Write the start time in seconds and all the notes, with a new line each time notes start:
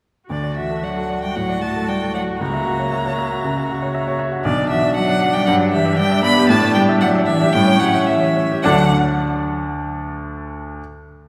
0.29 D2 D3 F#4 D5
0.43 D5
0.57 E3 F#4 E5
0.70 A4
0.82 F#3 D5 F#5
0.97 A4
1.10 D5
1.22 G3 F#4 G5
1.35 A2 F#3 F#5
1.49 D5
1.60 A3 F#4 A5
1.76 A4
1.87 G3 D5 G5
2.02 A4
2.14 F#3 D5 F#5
2.28 F#4
2.40 C#2 A#3 A#5
2.53 E5
2.67 F#4
2.79 C#5
2.93 E5
3.06 C#5
3.18 E5
3.31 F#4
3.44 C#3
3.57 E5
3.70 F#4
3.82 C#5
3.95 E5
4.08 C#5
4.19 E5
4.32 F#4
4.44 B1 D3 D4 D5
4.58 D5
4.69 E3 F#4 E5
4.83 D5
4.95 F#3 F#4 F#5
5.09 D5
5.22 F#4
5.33 G3 D5 G5
5.46 G2 F#3 F#5
5.60 D5
5.72 E3 G4 E5
5.86 E5
5.98 G3 D5 G5
6.11 E5
6.23 B3 D5 B5
6.38 G4
6.49 A2 A3 A5
6.63 D5
6.74 G3 G4 G5
6.89 E5
7.01 F#3 D5 F#5
7.15 E5
7.26 E3 D5 E5
7.41 G4
7.53 A2 G3 C#4 G5
7.68 C#5
7.79 F#3 G4 F#5
7.95 E5
8.07 E3 C#5 E5
8.23 E5
8.37 C#5
8.52 G4
8.62 D2 D3 F#3 D4 A4 D5 F#5 A5